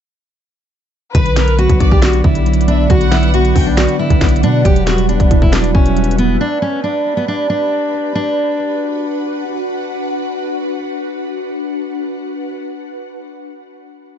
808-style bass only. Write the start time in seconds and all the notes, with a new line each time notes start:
1.15 B1
1.69 B1
2.24 B1
2.90 B1
3.56 B1
4.10 B1
4.43 B2
4.65 E1
5.20 E1
5.31 E1
5.42 E1
5.75 E1